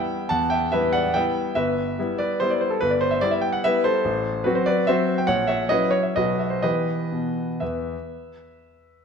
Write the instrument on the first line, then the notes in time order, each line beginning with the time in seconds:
grand piano
Already playing: G3 B3 E4 E5 G5
0.29 E2 F#5 A5
0.50 E5 G5
0.72 G3 B3 E4 B4 E5
0.93 D5 F#5
1.14 G3 B3 E4 E5 G5
1.55 G1 B4 E5
1.99 G3 B3 E4
2.18 B4 D5
2.40 G3 B3 E4 C5
2.50 D5
2.61 C5
2.70 A4
2.81 G1 B4
2.90 D5
3.01 C5
3.11 E5
3.21 G3 B3 E4 D5
3.31 E5
3.41 G5
3.53 F#5
3.64 G3 B3 E4 B4 E5
3.84 A4 C5
4.05 A1
4.44 F#3 C4 F#4 B4
4.55 C5
4.66 B4 D5
4.87 F#3 C4 F#4 C5 E5
5.18 G5
5.27 A#1 C#5 F#5
5.47 C#5 E5
5.69 F#3 C#4 E4 B4 D#5
5.91 C#5
6.03 E5
6.16 B1 F#3 B3 F#4 B4 D#5
6.39 E5
6.50 C5
6.62 E3 B3 G4 B4 D#5
7.12 B2
7.60 E2 B4 E5